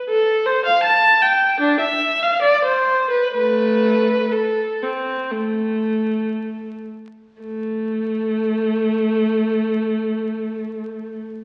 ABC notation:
X:1
M:4/4
L:1/16
Q:1/4=60
K:Am
V:1 name="Viola"
A2 c f a2 g2 D e2 f d c2 B | [A,B]4 A2 C2 A,6 z2 | A,16 |]